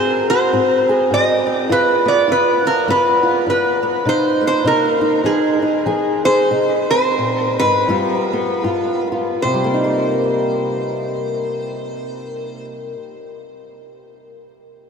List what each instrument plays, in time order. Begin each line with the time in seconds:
Already playing: steel-string acoustic guitar G#2 C4 F#4 G#4, resonator guitar played with a steel bar C5
0.30 steel-string acoustic guitar F#4, resonator guitar played with a steel bar C5
0.53 steel-string acoustic guitar G#2 C4
0.89 steel-string acoustic guitar G#4
1.11 steel-string acoustic guitar G#2, resonator guitar played with a steel bar D#5
1.47 steel-string acoustic guitar C4
1.69 steel-string acoustic guitar G2 F4, resonator guitar played with a steel bar B4
2.05 steel-string acoustic guitar B3, resonator guitar played with a steel bar D5
2.28 steel-string acoustic guitar G2 F4
2.32 resonator guitar played with a steel bar B4
2.65 steel-string acoustic guitar F4, resonator guitar played with a steel bar A#4
2.87 steel-string acoustic guitar G2 B3, resonator guitar played with a steel bar B4
3.23 steel-string acoustic guitar F4
3.46 steel-string acoustic guitar G2, resonator guitar played with a steel bar B4
3.83 steel-string acoustic guitar B3
4.05 steel-string acoustic guitar C3 D#4, resonator guitar played with a steel bar C5
4.41 steel-string acoustic guitar A#3
4.47 resonator guitar played with a steel bar C5
4.64 steel-string acoustic guitar C3 D#4, resonator guitar played with a steel bar A#4
5.01 steel-string acoustic guitar D#4
5.24 steel-string acoustic guitar F3 D#4, resonator guitar played with a steel bar G#4
5.62 steel-string acoustic guitar D#4
5.86 steel-string acoustic guitar F3 G#4
6.25 steel-string acoustic guitar G#4, resonator guitar played with a steel bar C5
6.51 steel-string acoustic guitar C3 D#4
6.91 steel-string acoustic guitar C4, resonator guitar played with a steel bar C5
7.18 steel-string acoustic guitar A#2
7.59 steel-string acoustic guitar G#2, resonator guitar played with a steel bar B4
7.88 steel-string acoustic guitar G2 G3 B3 F4
8.33 steel-string acoustic guitar B3
8.64 steel-string acoustic guitar G2 F4
9.12 steel-string acoustic guitar F4
9.42 steel-string acoustic guitar C3, resonator guitar played with a steel bar C5
9.54 steel-string acoustic guitar G3
9.64 steel-string acoustic guitar A#3
9.74 steel-string acoustic guitar D#4
9.84 steel-string acoustic guitar A#4